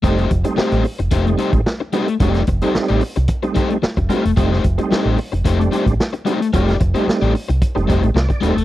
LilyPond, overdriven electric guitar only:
\new Staff \with { instrumentName = "Overdriven electric guitar" } { \time 4/4 \key f \mixolydian \tempo 4 = 111 <a ees' g' c''>8 r8 <a ees' g' c''>8 r8 <a ees' g' c''>16 r16 <a ees' g' c''>16 r8. <a ees' g' c''>16 r16 | <a ees' g' d''>16 r8 <a ees' g' c''>16 r16 <a ees' g' d''>16 r4 <a ees' g' c''>16 r8. <a ees' g' c''>16 r16 | <a ees' g' c''>8 r8 <a ees' g' c''>8 r8 <a ees' g' c''>16 r16 <a ees' g' c''>16 r8. <a ees' g' c''>16 r16 | <a ees' g' d''>16 r8 <a ees' g' c''>16 r16 <a ees' g' d''>16 r4 <a ees' g' c''>16 r8. <a ees' g' c''>16 r16 | }